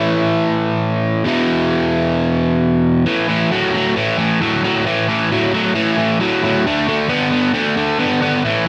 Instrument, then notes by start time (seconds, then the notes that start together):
overdriven electric guitar
Already playing: A2 E3 A3
1.25 E2 B2 E3
3.06 A2 E3
3.28 A2 E3
3.51 A2 F#3
3.74 A2 F#3
3.96 A2 E3
4.18 A2 E3
4.41 A2 F#3
4.64 A2 F#3
4.86 A2 E3
5.09 A2 E3
5.32 A2 F#3
5.54 A2 F#3
5.75 A2 E3
5.98 A2 E3
6.20 A2 F#3
6.43 A2 F#3
6.66 D3 A3
6.88 D3 A3
7.09 D3 B3
7.32 D3 B3
7.54 D3 A3
7.77 D3 A3
7.99 D3 B3
8.22 D3 B3
8.45 A2 E3